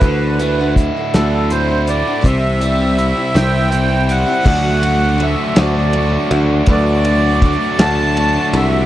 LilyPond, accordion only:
\new Staff \with { instrumentName = "Accordion" } { \time 6/8 \key d \mixolydian \tempo 4. = 54 b'4 r8 a'8 c''8 d''8 | e''4. g''4 fis''8~ | fis''4 e''8 d''4 r8 | d''4. a''4 e''8 | }